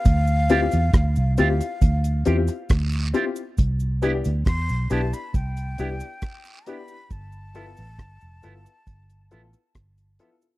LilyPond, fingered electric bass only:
\new Staff \with { instrumentName = "Fingered electric bass" } { \clef bass \time 4/4 \key c \major \tempo 4 = 68 d,8. e,16 d,16 c,16 d,16 r16 d,8 e,16 r16 d,8 r8 | c,8. d,16 e,16 b,,16 b,,16 r16 c,8 c,16 r4 r16 | g,,8. a,,16 g,,16 f,,16 g,,16 r16 g,,8 a,,16 r16 g,,8 r8 | }